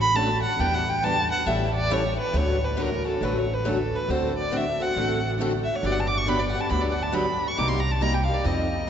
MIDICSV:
0, 0, Header, 1, 5, 480
1, 0, Start_track
1, 0, Key_signature, 2, "major"
1, 0, Tempo, 436364
1, 658, Time_signature, 4, 2, 24, 8
1, 9787, End_track
2, 0, Start_track
2, 0, Title_t, "Violin"
2, 0, Program_c, 0, 40
2, 13, Note_on_c, 0, 83, 118
2, 173, Note_on_c, 0, 81, 106
2, 190, Note_off_c, 0, 83, 0
2, 466, Note_off_c, 0, 81, 0
2, 473, Note_on_c, 0, 78, 94
2, 658, Note_on_c, 0, 79, 100
2, 674, Note_off_c, 0, 78, 0
2, 819, Note_on_c, 0, 78, 95
2, 835, Note_off_c, 0, 79, 0
2, 979, Note_on_c, 0, 79, 104
2, 995, Note_off_c, 0, 78, 0
2, 1146, Note_on_c, 0, 81, 126
2, 1163, Note_off_c, 0, 79, 0
2, 1442, Note_off_c, 0, 81, 0
2, 1448, Note_on_c, 0, 78, 94
2, 1613, Note_on_c, 0, 76, 79
2, 1629, Note_off_c, 0, 78, 0
2, 1915, Note_off_c, 0, 76, 0
2, 1922, Note_on_c, 0, 74, 108
2, 2124, Note_on_c, 0, 73, 96
2, 2141, Note_off_c, 0, 74, 0
2, 2411, Note_off_c, 0, 73, 0
2, 2419, Note_on_c, 0, 71, 94
2, 2604, Note_on_c, 0, 73, 94
2, 2620, Note_off_c, 0, 71, 0
2, 2907, Note_on_c, 0, 71, 79
2, 2923, Note_off_c, 0, 73, 0
2, 3096, Note_on_c, 0, 70, 87
2, 3112, Note_off_c, 0, 71, 0
2, 3377, Note_off_c, 0, 70, 0
2, 3383, Note_on_c, 0, 69, 87
2, 3563, Note_on_c, 0, 71, 72
2, 3579, Note_off_c, 0, 69, 0
2, 3721, Note_on_c, 0, 73, 79
2, 3738, Note_off_c, 0, 71, 0
2, 3889, Note_on_c, 0, 71, 80
2, 3905, Note_off_c, 0, 73, 0
2, 4051, Note_on_c, 0, 69, 88
2, 4067, Note_off_c, 0, 71, 0
2, 4348, Note_on_c, 0, 71, 85
2, 4364, Note_off_c, 0, 69, 0
2, 4511, Note_on_c, 0, 72, 85
2, 4528, Note_off_c, 0, 71, 0
2, 4805, Note_off_c, 0, 72, 0
2, 4814, Note_on_c, 0, 74, 86
2, 5019, Note_on_c, 0, 76, 90
2, 5035, Note_off_c, 0, 74, 0
2, 5300, Note_on_c, 0, 78, 101
2, 5316, Note_off_c, 0, 76, 0
2, 5770, Note_off_c, 0, 78, 0
2, 6198, Note_on_c, 0, 76, 88
2, 6324, Note_on_c, 0, 73, 88
2, 6341, Note_off_c, 0, 76, 0
2, 6441, Note_on_c, 0, 74, 96
2, 6458, Note_off_c, 0, 73, 0
2, 6508, Note_on_c, 0, 78, 89
2, 6525, Note_off_c, 0, 74, 0
2, 6599, Note_on_c, 0, 81, 84
2, 6616, Note_off_c, 0, 78, 0
2, 6673, Note_on_c, 0, 86, 99
2, 6689, Note_off_c, 0, 81, 0
2, 6792, Note_on_c, 0, 85, 90
2, 6809, Note_off_c, 0, 86, 0
2, 6907, Note_on_c, 0, 83, 99
2, 6924, Note_off_c, 0, 85, 0
2, 7031, Note_on_c, 0, 74, 76
2, 7047, Note_off_c, 0, 83, 0
2, 7149, Note_on_c, 0, 78, 87
2, 7166, Note_off_c, 0, 74, 0
2, 7265, Note_on_c, 0, 81, 83
2, 7282, Note_off_c, 0, 78, 0
2, 7366, Note_on_c, 0, 83, 93
2, 7382, Note_off_c, 0, 81, 0
2, 7488, Note_on_c, 0, 74, 70
2, 7504, Note_off_c, 0, 83, 0
2, 7612, Note_on_c, 0, 78, 93
2, 7628, Note_off_c, 0, 74, 0
2, 7722, Note_on_c, 0, 81, 92
2, 7738, Note_off_c, 0, 78, 0
2, 7855, Note_on_c, 0, 83, 90
2, 7872, Note_off_c, 0, 81, 0
2, 8220, Note_on_c, 0, 85, 91
2, 8237, Note_off_c, 0, 83, 0
2, 8342, Note_on_c, 0, 86, 103
2, 8358, Note_off_c, 0, 85, 0
2, 8448, Note_on_c, 0, 84, 82
2, 8465, Note_off_c, 0, 86, 0
2, 8575, Note_on_c, 0, 82, 97
2, 8591, Note_off_c, 0, 84, 0
2, 8703, Note_on_c, 0, 81, 89
2, 8719, Note_off_c, 0, 82, 0
2, 8820, Note_on_c, 0, 82, 112
2, 8837, Note_off_c, 0, 81, 0
2, 8950, Note_on_c, 0, 79, 75
2, 8967, Note_off_c, 0, 82, 0
2, 9055, Note_on_c, 0, 77, 91
2, 9071, Note_off_c, 0, 79, 0
2, 9176, Note_on_c, 0, 74, 87
2, 9192, Note_off_c, 0, 77, 0
2, 9307, Note_on_c, 0, 75, 74
2, 9323, Note_off_c, 0, 74, 0
2, 9787, Note_off_c, 0, 75, 0
2, 9787, End_track
3, 0, Start_track
3, 0, Title_t, "Steel-string acoustic guitar"
3, 0, Program_c, 1, 25
3, 165, Note_on_c, 1, 69, 98
3, 295, Note_off_c, 1, 69, 0
3, 647, Note_on_c, 1, 55, 68
3, 651, Note_on_c, 1, 71, 84
3, 654, Note_on_c, 1, 64, 76
3, 887, Note_off_c, 1, 55, 0
3, 889, Note_off_c, 1, 71, 0
3, 890, Note_off_c, 1, 64, 0
3, 1136, Note_on_c, 1, 55, 102
3, 1140, Note_on_c, 1, 71, 106
3, 1143, Note_on_c, 1, 64, 97
3, 1261, Note_off_c, 1, 55, 0
3, 1263, Note_off_c, 1, 71, 0
3, 1265, Note_off_c, 1, 64, 0
3, 2590, Note_on_c, 1, 69, 66
3, 2819, Note_off_c, 1, 69, 0
3, 3078, Note_on_c, 1, 69, 95
3, 3192, Note_off_c, 1, 69, 0
3, 3552, Note_on_c, 1, 69, 78
3, 3780, Note_off_c, 1, 69, 0
3, 4039, Note_on_c, 1, 69, 92
3, 4153, Note_off_c, 1, 69, 0
3, 9787, End_track
4, 0, Start_track
4, 0, Title_t, "Steel-string acoustic guitar"
4, 0, Program_c, 2, 25
4, 178, Note_on_c, 2, 50, 85
4, 178, Note_on_c, 2, 54, 95
4, 178, Note_on_c, 2, 57, 88
4, 186, Note_on_c, 2, 66, 94
4, 190, Note_on_c, 2, 61, 90
4, 302, Note_off_c, 2, 50, 0
4, 302, Note_off_c, 2, 54, 0
4, 302, Note_off_c, 2, 57, 0
4, 306, Note_off_c, 2, 66, 0
4, 308, Note_off_c, 2, 61, 0
4, 663, Note_on_c, 2, 52, 75
4, 667, Note_on_c, 2, 62, 78
4, 669, Note_on_c, 2, 59, 73
4, 671, Note_on_c, 2, 67, 73
4, 895, Note_off_c, 2, 52, 0
4, 897, Note_off_c, 2, 62, 0
4, 898, Note_off_c, 2, 59, 0
4, 899, Note_off_c, 2, 67, 0
4, 1160, Note_on_c, 2, 62, 94
4, 1162, Note_on_c, 2, 52, 79
4, 1165, Note_on_c, 2, 59, 81
4, 1172, Note_on_c, 2, 67, 88
4, 1273, Note_off_c, 2, 62, 0
4, 1274, Note_off_c, 2, 52, 0
4, 1276, Note_off_c, 2, 59, 0
4, 1279, Note_off_c, 2, 67, 0
4, 1612, Note_on_c, 2, 61, 66
4, 1613, Note_on_c, 2, 52, 69
4, 1620, Note_on_c, 2, 55, 76
4, 1622, Note_on_c, 2, 64, 71
4, 1622, Note_on_c, 2, 69, 88
4, 1850, Note_off_c, 2, 52, 0
4, 1850, Note_off_c, 2, 61, 0
4, 1854, Note_off_c, 2, 55, 0
4, 1854, Note_off_c, 2, 64, 0
4, 1855, Note_off_c, 2, 69, 0
4, 2093, Note_on_c, 2, 52, 88
4, 2101, Note_on_c, 2, 55, 101
4, 2104, Note_on_c, 2, 61, 101
4, 2104, Note_on_c, 2, 69, 93
4, 2106, Note_on_c, 2, 64, 112
4, 2220, Note_off_c, 2, 52, 0
4, 2224, Note_off_c, 2, 55, 0
4, 2226, Note_off_c, 2, 61, 0
4, 2226, Note_off_c, 2, 64, 0
4, 2226, Note_off_c, 2, 69, 0
4, 2566, Note_on_c, 2, 50, 69
4, 2573, Note_on_c, 2, 54, 63
4, 2574, Note_on_c, 2, 57, 67
4, 2579, Note_on_c, 2, 61, 74
4, 2583, Note_on_c, 2, 66, 72
4, 2807, Note_off_c, 2, 50, 0
4, 2810, Note_off_c, 2, 54, 0
4, 2811, Note_off_c, 2, 57, 0
4, 2813, Note_off_c, 2, 61, 0
4, 2815, Note_off_c, 2, 66, 0
4, 3046, Note_on_c, 2, 50, 85
4, 3049, Note_on_c, 2, 57, 86
4, 3051, Note_on_c, 2, 54, 90
4, 3051, Note_on_c, 2, 66, 91
4, 3056, Note_on_c, 2, 61, 83
4, 3176, Note_off_c, 2, 50, 0
4, 3178, Note_off_c, 2, 57, 0
4, 3179, Note_off_c, 2, 54, 0
4, 3179, Note_off_c, 2, 66, 0
4, 3181, Note_off_c, 2, 61, 0
4, 3346, Note_on_c, 2, 66, 58
4, 3352, Note_on_c, 2, 61, 47
4, 3362, Note_on_c, 2, 57, 48
4, 3526, Note_off_c, 2, 66, 0
4, 3529, Note_off_c, 2, 61, 0
4, 3534, Note_off_c, 2, 57, 0
4, 3547, Note_on_c, 2, 50, 73
4, 3548, Note_on_c, 2, 54, 70
4, 3554, Note_on_c, 2, 57, 70
4, 3555, Note_on_c, 2, 66, 77
4, 3556, Note_on_c, 2, 61, 66
4, 3777, Note_off_c, 2, 50, 0
4, 3778, Note_off_c, 2, 54, 0
4, 3781, Note_off_c, 2, 57, 0
4, 3781, Note_off_c, 2, 66, 0
4, 3782, Note_off_c, 2, 61, 0
4, 4014, Note_on_c, 2, 50, 84
4, 4015, Note_on_c, 2, 54, 101
4, 4016, Note_on_c, 2, 57, 92
4, 4023, Note_on_c, 2, 61, 94
4, 4029, Note_on_c, 2, 66, 97
4, 4141, Note_off_c, 2, 50, 0
4, 4141, Note_off_c, 2, 54, 0
4, 4142, Note_off_c, 2, 57, 0
4, 4145, Note_off_c, 2, 61, 0
4, 4148, Note_off_c, 2, 66, 0
4, 4509, Note_on_c, 2, 50, 68
4, 4511, Note_on_c, 2, 57, 64
4, 4516, Note_on_c, 2, 60, 66
4, 4516, Note_on_c, 2, 66, 75
4, 4518, Note_on_c, 2, 69, 72
4, 4738, Note_off_c, 2, 50, 0
4, 4739, Note_off_c, 2, 57, 0
4, 4742, Note_off_c, 2, 60, 0
4, 4742, Note_off_c, 2, 66, 0
4, 4743, Note_off_c, 2, 69, 0
4, 4966, Note_on_c, 2, 50, 78
4, 4973, Note_on_c, 2, 60, 82
4, 4977, Note_on_c, 2, 57, 80
4, 4978, Note_on_c, 2, 66, 85
4, 4982, Note_on_c, 2, 69, 85
4, 5097, Note_off_c, 2, 50, 0
4, 5100, Note_off_c, 2, 60, 0
4, 5103, Note_off_c, 2, 57, 0
4, 5103, Note_off_c, 2, 66, 0
4, 5105, Note_off_c, 2, 69, 0
4, 5281, Note_on_c, 2, 69, 59
4, 5290, Note_on_c, 2, 66, 48
4, 5295, Note_on_c, 2, 60, 46
4, 5454, Note_off_c, 2, 60, 0
4, 5454, Note_off_c, 2, 69, 0
4, 5455, Note_off_c, 2, 66, 0
4, 5457, Note_on_c, 2, 50, 65
4, 5467, Note_on_c, 2, 60, 64
4, 5469, Note_on_c, 2, 66, 69
4, 5471, Note_on_c, 2, 57, 66
4, 5475, Note_on_c, 2, 69, 71
4, 5693, Note_off_c, 2, 50, 0
4, 5698, Note_off_c, 2, 60, 0
4, 5698, Note_off_c, 2, 66, 0
4, 5700, Note_off_c, 2, 57, 0
4, 5702, Note_off_c, 2, 69, 0
4, 5946, Note_on_c, 2, 50, 86
4, 5949, Note_on_c, 2, 57, 97
4, 5954, Note_on_c, 2, 60, 93
4, 5954, Note_on_c, 2, 66, 103
4, 5957, Note_on_c, 2, 69, 104
4, 6067, Note_off_c, 2, 50, 0
4, 6068, Note_off_c, 2, 57, 0
4, 6071, Note_off_c, 2, 60, 0
4, 6071, Note_off_c, 2, 66, 0
4, 6073, Note_off_c, 2, 69, 0
4, 6415, Note_on_c, 2, 50, 65
4, 6418, Note_on_c, 2, 54, 72
4, 6424, Note_on_c, 2, 59, 67
4, 6424, Note_on_c, 2, 67, 67
4, 6428, Note_on_c, 2, 62, 75
4, 6651, Note_off_c, 2, 50, 0
4, 6653, Note_off_c, 2, 54, 0
4, 6656, Note_off_c, 2, 59, 0
4, 6656, Note_off_c, 2, 67, 0
4, 6658, Note_off_c, 2, 62, 0
4, 6893, Note_on_c, 2, 50, 86
4, 6899, Note_on_c, 2, 54, 82
4, 6904, Note_on_c, 2, 67, 89
4, 6906, Note_on_c, 2, 62, 90
4, 6907, Note_on_c, 2, 59, 85
4, 7020, Note_off_c, 2, 50, 0
4, 7023, Note_off_c, 2, 54, 0
4, 7026, Note_off_c, 2, 67, 0
4, 7027, Note_off_c, 2, 62, 0
4, 7028, Note_off_c, 2, 59, 0
4, 7185, Note_on_c, 2, 67, 53
4, 7194, Note_on_c, 2, 62, 51
4, 7205, Note_on_c, 2, 59, 51
4, 7358, Note_off_c, 2, 59, 0
4, 7366, Note_off_c, 2, 62, 0
4, 7366, Note_off_c, 2, 67, 0
4, 7370, Note_on_c, 2, 50, 66
4, 7371, Note_on_c, 2, 54, 70
4, 7372, Note_on_c, 2, 59, 64
4, 7379, Note_on_c, 2, 62, 64
4, 7379, Note_on_c, 2, 67, 70
4, 7609, Note_off_c, 2, 50, 0
4, 7610, Note_off_c, 2, 54, 0
4, 7610, Note_off_c, 2, 59, 0
4, 7613, Note_off_c, 2, 62, 0
4, 7614, Note_off_c, 2, 67, 0
4, 7836, Note_on_c, 2, 50, 93
4, 7845, Note_on_c, 2, 54, 100
4, 7847, Note_on_c, 2, 59, 92
4, 7847, Note_on_c, 2, 62, 98
4, 7852, Note_on_c, 2, 67, 90
4, 7972, Note_off_c, 2, 50, 0
4, 7976, Note_off_c, 2, 54, 0
4, 7977, Note_off_c, 2, 59, 0
4, 7977, Note_off_c, 2, 62, 0
4, 7980, Note_off_c, 2, 67, 0
4, 8332, Note_on_c, 2, 55, 68
4, 8336, Note_on_c, 2, 58, 77
4, 8337, Note_on_c, 2, 48, 73
4, 8345, Note_on_c, 2, 63, 68
4, 8346, Note_on_c, 2, 67, 71
4, 8570, Note_off_c, 2, 55, 0
4, 8572, Note_off_c, 2, 48, 0
4, 8572, Note_off_c, 2, 58, 0
4, 8576, Note_off_c, 2, 63, 0
4, 8577, Note_off_c, 2, 67, 0
4, 8813, Note_on_c, 2, 48, 83
4, 8814, Note_on_c, 2, 55, 80
4, 8821, Note_on_c, 2, 58, 82
4, 8821, Note_on_c, 2, 63, 94
4, 8827, Note_on_c, 2, 67, 101
4, 8940, Note_off_c, 2, 48, 0
4, 8941, Note_off_c, 2, 55, 0
4, 8944, Note_off_c, 2, 58, 0
4, 8944, Note_off_c, 2, 63, 0
4, 8947, Note_off_c, 2, 67, 0
4, 9111, Note_on_c, 2, 67, 54
4, 9124, Note_on_c, 2, 63, 55
4, 9128, Note_on_c, 2, 58, 43
4, 9287, Note_off_c, 2, 63, 0
4, 9288, Note_off_c, 2, 67, 0
4, 9289, Note_on_c, 2, 53, 70
4, 9296, Note_off_c, 2, 58, 0
4, 9300, Note_on_c, 2, 60, 70
4, 9300, Note_on_c, 2, 63, 62
4, 9310, Note_on_c, 2, 69, 68
4, 9528, Note_off_c, 2, 53, 0
4, 9534, Note_off_c, 2, 60, 0
4, 9534, Note_off_c, 2, 63, 0
4, 9539, Note_off_c, 2, 69, 0
4, 9787, End_track
5, 0, Start_track
5, 0, Title_t, "Upright bass"
5, 0, Program_c, 3, 32
5, 0, Note_on_c, 3, 33, 87
5, 463, Note_off_c, 3, 33, 0
5, 654, Note_on_c, 3, 40, 86
5, 1424, Note_off_c, 3, 40, 0
5, 1604, Note_on_c, 3, 33, 86
5, 2378, Note_off_c, 3, 33, 0
5, 2568, Note_on_c, 3, 38, 89
5, 3341, Note_off_c, 3, 38, 0
5, 3532, Note_on_c, 3, 33, 78
5, 4303, Note_off_c, 3, 33, 0
5, 4494, Note_on_c, 3, 38, 93
5, 5264, Note_off_c, 3, 38, 0
5, 5455, Note_on_c, 3, 33, 76
5, 6225, Note_off_c, 3, 33, 0
5, 6413, Note_on_c, 3, 31, 87
5, 7184, Note_off_c, 3, 31, 0
5, 7376, Note_on_c, 3, 38, 84
5, 8145, Note_off_c, 3, 38, 0
5, 8343, Note_on_c, 3, 36, 82
5, 9109, Note_off_c, 3, 36, 0
5, 9297, Note_on_c, 3, 41, 83
5, 9787, Note_off_c, 3, 41, 0
5, 9787, End_track
0, 0, End_of_file